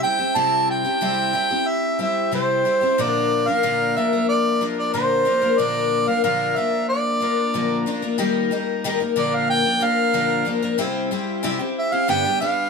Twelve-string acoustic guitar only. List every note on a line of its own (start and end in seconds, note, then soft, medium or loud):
0.03 0.20 G3 medium
0.03 0.19 C4 medium
0.03 0.18 E4 soft
0.03 0.18 G4 medium
0.19 0.35 C4 soft
0.19 0.35 E4 soft
0.19 0.35 G4 soft
0.35 0.85 C3 medium
0.35 0.85 G3 medium
0.35 0.85 C4 medium
0.35 0.84 E4 medium
0.35 0.83 G4 medium
0.84 1.01 C4 soft
0.84 1.01 E4 soft
0.84 1.01 G4 soft
1.01 1.34 C3 medium
1.01 1.32 G3 medium
1.01 1.33 C4 medium
1.01 1.33 E4 medium
1.01 1.34 G4 medium
1.33 1.50 G3 soft
1.33 1.51 C4 soft
1.33 1.50 E4 medium
1.33 1.49 G4 medium
1.50 1.98 C4 soft
1.50 1.99 E4 soft
1.50 1.99 G4 soft
1.99 2.31 G3 soft
1.99 2.31 C4 medium
1.99 2.32 E4 medium
1.99 2.32 G4 medium
2.32 2.65 C3 medium
2.32 2.64 G3 medium
2.32 2.65 C4 medium
2.32 2.65 E4 medium
2.32 2.66 G4 medium
2.65 2.82 G3 soft
2.65 2.82 C4 medium
2.65 2.81 E4 medium
2.65 2.80 G4 medium
2.81 2.99 C4 soft
2.81 2.98 E4 soft
2.81 2.98 G4 soft
2.98 3.47 A#2 medium
2.98 3.47 D3 medium
2.98 3.47 F3 medium
2.98 3.47 A#3 medium
2.98 3.47 D4 medium
2.98 3.46 A#4 medium
3.47 3.62 F3 soft
3.47 3.63 A#3 soft
3.47 3.62 D4 soft
3.47 3.63 A#4 soft
3.63 3.96 A#2 medium
3.63 3.96 D3 medium
3.63 3.95 F3 medium
3.63 3.96 A#3 medium
3.63 3.96 D4 medium
3.63 3.96 A#4 medium
3.97 4.13 F3 medium
3.97 4.13 A#3 medium
3.97 4.12 D4 soft
3.97 4.12 A#4 medium
4.13 4.60 F3 soft
4.13 4.60 A#3 soft
4.13 4.61 D4 soft
4.13 4.61 A#4 soft
4.61 4.93 F3 soft
4.61 4.93 A#3 medium
4.61 4.94 D4 medium
4.61 4.94 A#4 medium
4.94 5.26 A#2 medium
4.94 5.26 D3 medium
4.94 5.24 F3 medium
4.94 5.24 A#3 medium
4.94 5.25 D4 medium
4.94 5.26 A#4 medium
5.25 5.42 F3 soft
5.25 5.41 A#3 medium
5.25 5.41 D4 medium
5.25 5.40 A#4 medium
5.42 5.58 F3 soft
5.42 5.58 A#3 soft
5.42 5.58 D4 soft
5.42 5.58 A#4 soft
5.58 6.07 A#2 medium
5.58 6.08 D3 medium
5.58 6.08 F3 medium
5.58 6.08 A#3 medium
5.58 6.07 D4 medium
5.58 6.06 A#4 medium
6.07 6.23 F3 soft
6.07 6.23 A#3 soft
6.07 6.23 D4 soft
6.07 6.24 A#4 soft
6.24 6.56 A#2 medium
6.24 6.56 D3 medium
6.24 6.55 F3 medium
6.24 6.55 A#3 medium
6.24 6.56 D4 medium
6.24 6.57 A#4 medium
6.56 7.19 F3 soft
6.56 7.20 A#3 soft
6.56 7.21 D4 soft
6.56 7.21 A#4 medium
7.20 7.53 F3 medium
7.20 7.54 A#3 soft
7.20 7.54 D4 medium
7.20 7.54 A#4 medium
7.54 7.86 A#2 medium
7.54 7.86 D3 medium
7.54 7.85 F3 medium
7.54 7.86 A#3 medium
7.54 7.86 D4 medium
7.54 7.87 A#4 medium
7.86 8.02 F3 medium
7.86 8.02 A#3 medium
7.86 8.02 D4 medium
7.86 8.01 A#4 medium
8.02 8.18 F3 soft
8.02 8.18 A#3 soft
8.02 8.19 D4 soft
8.02 8.18 A#4 soft
8.18 8.51 D#3 medium
8.18 8.50 G3 medium
8.18 8.51 A#3 medium
8.18 8.51 D#4 medium
8.18 8.52 A#4 medium
8.51 8.84 G3 medium
8.51 8.84 A#3 medium
8.51 8.84 D#4 medium
8.51 8.85 A#4 medium
8.84 9.00 D#3 medium
8.84 9.01 G3 medium
8.84 9.01 A#3 medium
8.84 9.00 D#4 medium
8.84 8.99 A#4 medium
9.00 9.15 A#3 soft
9.00 9.17 D#4 soft
9.00 9.16 A#4 soft
9.16 9.65 A#2 medium
9.16 9.65 D3 medium
9.16 9.65 F3 medium
9.16 9.64 A#3 medium
9.16 9.64 D4 medium
9.16 9.63 A#4 medium
9.64 9.79 F3 soft
9.64 9.80 A#3 soft
9.64 9.80 D4 soft
9.64 9.81 A#4 soft
9.80 10.13 F3 medium
9.80 10.13 A#3 medium
9.80 10.14 D4 medium
9.80 10.13 A#4 medium
10.13 10.46 A#2 medium
10.13 10.46 D3 medium
10.13 10.44 F3 medium
10.13 10.45 A#3 medium
10.13 10.45 D4 medium
10.13 10.46 A#4 medium
10.45 10.62 F3 medium
10.45 10.62 A#3 medium
10.45 10.62 D4 medium
10.45 10.61 A#4 medium
10.62 10.78 F3 soft
10.62 10.78 A#3 medium
10.62 10.78 D4 medium
10.62 10.79 A#4 medium
10.78 11.11 C3 medium
10.78 11.10 G3 medium
10.78 11.11 C4 medium
10.78 11.11 E4 medium
10.78 11.11 G4 medium
11.11 11.42 G3 medium
11.11 11.43 C4 medium
11.11 11.43 E4 medium
11.11 11.43 G4 medium
11.43 11.59 C3 medium
11.43 11.60 G3 medium
11.43 11.60 C4 medium
11.43 11.59 E4 medium
11.43 11.58 G4 medium
11.59 11.93 C4 soft
11.59 11.92 E4 soft
11.59 11.91 G4 soft
11.92 12.08 C4 soft
11.92 12.08 E4 soft
11.92 12.08 G4 soft
12.08 12.24 G2 medium
12.08 12.24 D3 medium
12.08 12.25 G3 medium
12.08 12.25 B3 medium
12.08 12.24 D4 medium
12.08 12.24 G4 medium
12.25 12.39 G3 soft
12.25 12.40 B3 soft
12.25 12.40 D4 soft
12.25 12.41 G4 soft
12.40 12.70 G3 medium
12.40 12.70 B3 medium
12.40 12.70 D4 medium
12.40 12.70 G4 medium